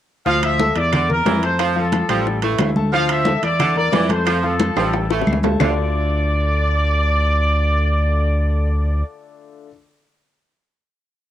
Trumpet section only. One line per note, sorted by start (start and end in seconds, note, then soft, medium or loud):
0.27 0.42 F5 loud
0.43 0.74 E5 loud
0.76 1.09 D5 loud
1.11 1.41 A#4 medium
1.44 1.74 C5 medium
1.77 2.39 A4 medium
2.93 3.08 F5 loud
3.10 3.41 E5 loud
3.44 3.75 D5 loud
3.77 4.08 D5 loud
4.10 4.43 C5 medium
4.45 5.07 A4 medium
5.61 9.04 D5 loud